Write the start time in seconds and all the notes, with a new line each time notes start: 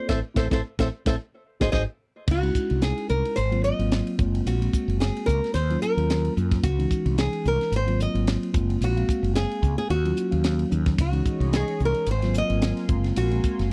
0.08 A1 A3 C4 E4 A4 C5 E5, kick, snare
0.34 A1 A3 C4 E4 A4 C5 E5, kick, snare
0.51 A1 A3 C4 E4 A4 C5 E5, kick, snare
0.79 A1 A3 C4 E4 A4 C5 E5, kick, snare
1.06 A1 A3 C4 E4 A4 C5 E5, kick, snare
1.60 G#1 D#4 F#4 G#4 C5 D#5, kick, snare
1.72 G#1 D#4 F#4 G#4 C5 D#5, kick, snare
2.28 C#2 F#4, kick, crash
2.43 G#3 C#4 D#4 E4, ride
2.55 kick, hi-hat pedal
2.70 C2, ride
2.82 G#4, snare, hi-hat pedal, ride
2.98 ride
3.09 C2 A#4, hi-hat pedal
3.25 ride
3.36 G#1 C5, hi-hat pedal, ride
3.51 F#3 A#3 C4 F4, ride
3.64 D#5, hi-hat pedal
3.79 G#1 F#3 A#3 C4 F4, ride
3.91 snare, hi-hat pedal, ride
4.07 ride
4.18 F#1 G#3 A#3 C4 F4, kick, hi-hat pedal
4.35 ride
4.46 A#1 F#4, hi-hat pedal, ride
4.60 G#3 A#3 C4 F#4, ride
4.73 kick, hi-hat pedal
4.88 F#1, ride
5.00 G#4, snare, hi-hat pedal, ride
5.16 ride
5.26 C#2 A#4, kick, hi-hat pedal
5.44 snare, ride
5.54 D#2 C5, hi-hat pedal, ride
5.70 F#3 A#3 C#4 F4, ride
5.82 A#4, hi-hat pedal
5.97 D#2 F#3 A#3 C#4 F4, ride
6.10 snare, hi-hat pedal, ride
6.25 ride
6.37 F#2 F#3 A#3 C#4 F4, hi-hat pedal
6.51 kick, snare, ride
6.63 C#2 F#4, kick, hi-hat pedal, ride
6.79 E3 G#3 C#4 D#4, ride
6.91 kick, hi-hat pedal
7.06 C2, ride
7.18 G#4, snare, hi-hat pedal, ride
7.33 ride
7.45 C2 A#4, hi-hat pedal
7.61 snare, ride
7.72 G#1, hi-hat pedal, ride
7.76 C5
7.87 F#3 A#3 C4 F4, ride
8.00 D#5, hi-hat pedal
8.14 G#1 F#3 A#3 C4 F4, ride
8.27 snare, hi-hat pedal, ride
8.43 ride
8.53 F#1 G#3 A#3 C4 F4, kick, hi-hat pedal
8.70 ride
8.81 A#1 F#4, hi-hat pedal, ride
8.96 G#3 A#3 C4 F5, ride
9.09 kick, hi-hat pedal
9.23 F#1, ride
9.35 G#4, snare, hi-hat pedal, ride
9.51 ride
9.62 C#2, kick, hi-hat pedal
9.78 G#4, ride
9.90 D#2 F#4, hi-hat pedal, ride
10.05 F#3 A#3 C#4 F4, ride
10.16 hi-hat pedal
10.31 D#2 F#3 A#3 C#4 F5, ride
10.44 snare, hi-hat pedal, ride
10.59 ride
10.70 D#2 F#3 A#3 C#4 D#4, hi-hat pedal
10.86 kick, snare, ride
10.97 C#2 F#4 G#4 C#5 D#5 C#6, kick, hi-hat pedal, ride
11.12 E3 G#3 C#4 D#4, ride
11.26 kick, hi-hat pedal
11.40 C2, ride
11.53 G#4, snare, hi-hat pedal, ride
11.68 ride
11.80 C2, hi-hat pedal
11.85 A#4
11.94 ride
12.06 G#1 A#4 F5 G#5 C6, hi-hat pedal, ride
12.11 C5
12.22 F#3 A#3 C4 F4, snare, ride
12.34 hi-hat pedal
12.38 D#5
12.49 G#1 F#3 A#3 C4 F4, ride
12.62 snare, hi-hat pedal, ride
12.77 snare, ride
12.88 F#1 G#3 A#3 C4 F4 G#5, kick, hi-hat pedal
13.04 snare, ride
13.16 A#1 F#4, hi-hat pedal, ride
13.31 G#3 A#3 C4 F#4, ride
13.44 kick, hi-hat pedal
13.59 F#1, snare, ride